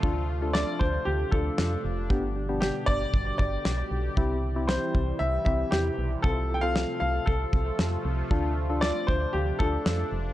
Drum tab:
SD |--o---o-|--o---o-|--o---o-|--o---o-|
BD |o--o-o--|o--ooo--|o--o-o--|o---oo--|

SD |--o---o-|
BD |o--o-o--|